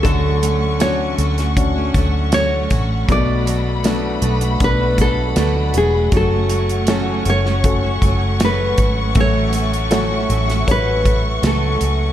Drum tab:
HH |x-x-x-xxx-x-x-x-|x-x-x-xxx-x-x-x-|x-xxx-x-x-x-x-x-|x-xxx-xxx-x-x-x-|
SD |----o--o----o---|----o-------o---|----o--o----o---|----o--o----o---|
BD |o-------o-o---o-|o-------o-o-----|o-------o-o---o-|o-------o-o-----|